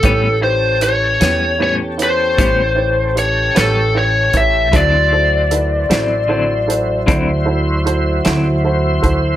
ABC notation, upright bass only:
X:1
M:12/8
L:1/8
Q:3/8=51
K:Ador
V:1 name="Upright bass" clef=bass
A,,,3 E,,3 A,,,3 A,,,2 A,,, | D,,3 A,,,3 D,,3 D,,2 D,, |]